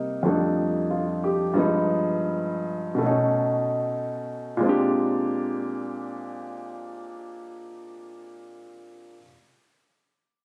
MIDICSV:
0, 0, Header, 1, 2, 480
1, 0, Start_track
1, 0, Tempo, 641711
1, 669, Tempo, 684151
1, 1139, Time_signature, 4, 2, 24, 8
1, 1629, Tempo, 762389
1, 2589, Tempo, 846262
1, 3069, Tempo, 882353
1, 6229, End_track
2, 0, Start_track
2, 0, Title_t, "Grand piano"
2, 0, Program_c, 0, 0
2, 0, Note_on_c, 0, 48, 55
2, 0, Note_on_c, 0, 55, 50
2, 0, Note_on_c, 0, 58, 53
2, 0, Note_on_c, 0, 63, 60
2, 168, Note_off_c, 0, 48, 0
2, 171, Note_on_c, 0, 41, 51
2, 174, Note_off_c, 0, 55, 0
2, 179, Note_on_c, 0, 53, 44
2, 185, Note_on_c, 0, 55, 47
2, 192, Note_on_c, 0, 57, 44
2, 195, Note_off_c, 0, 58, 0
2, 198, Note_off_c, 0, 63, 0
2, 203, Note_on_c, 0, 62, 45
2, 209, Note_on_c, 0, 63, 53
2, 676, Note_on_c, 0, 65, 45
2, 911, Note_on_c, 0, 67, 44
2, 1035, Note_off_c, 0, 65, 0
2, 1119, Note_off_c, 0, 53, 0
2, 1120, Note_on_c, 0, 43, 58
2, 1130, Note_on_c, 0, 53, 48
2, 1132, Note_off_c, 0, 41, 0
2, 1138, Note_off_c, 0, 55, 0
2, 1139, Note_on_c, 0, 56, 50
2, 1142, Note_off_c, 0, 57, 0
2, 1147, Note_off_c, 0, 62, 0
2, 1148, Note_off_c, 0, 63, 0
2, 1149, Note_on_c, 0, 59, 53
2, 1159, Note_on_c, 0, 63, 60
2, 1241, Note_off_c, 0, 67, 0
2, 2060, Note_on_c, 0, 47, 53
2, 2082, Note_on_c, 0, 57, 47
2, 2086, Note_off_c, 0, 43, 0
2, 2090, Note_off_c, 0, 53, 0
2, 2095, Note_off_c, 0, 56, 0
2, 2099, Note_off_c, 0, 59, 0
2, 2103, Note_off_c, 0, 63, 0
2, 2104, Note_on_c, 0, 61, 47
2, 2131, Note_on_c, 0, 63, 55
2, 3033, Note_on_c, 0, 46, 63
2, 3050, Note_on_c, 0, 56, 56
2, 3053, Note_off_c, 0, 47, 0
2, 3064, Note_off_c, 0, 57, 0
2, 3066, Note_on_c, 0, 60, 55
2, 3073, Note_off_c, 0, 61, 0
2, 3083, Note_on_c, 0, 62, 54
2, 3085, Note_off_c, 0, 63, 0
2, 3100, Note_on_c, 0, 67, 71
2, 5527, Note_off_c, 0, 46, 0
2, 5544, Note_off_c, 0, 56, 0
2, 5559, Note_off_c, 0, 60, 0
2, 5575, Note_off_c, 0, 62, 0
2, 5593, Note_off_c, 0, 67, 0
2, 6229, End_track
0, 0, End_of_file